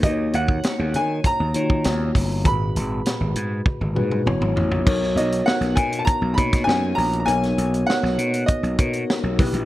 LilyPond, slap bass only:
\new Staff \with { instrumentName = "Slap bass" } { \clef bass \time 4/4 \key b \major \tempo 4 = 99 dis,8 dis,8 r16 dis,16 dis8 r16 dis,16 dis8 dis,8 g,,8 | gis,,8 gis,,8 r16 gis,,16 gis,8 r16 gis,,16 gis,8 fis,,16 gis,,16 a,,16 ais,,16 | b,,8 b,,8 r16 b,,16 b,8 r16 b,,16 b,8 fis,8 ais,,8 | b,,8 b,,8 r16 b,,16 b,8 r16 b,,16 b,8 r16 b,,16 b,,16 ais,,16 | }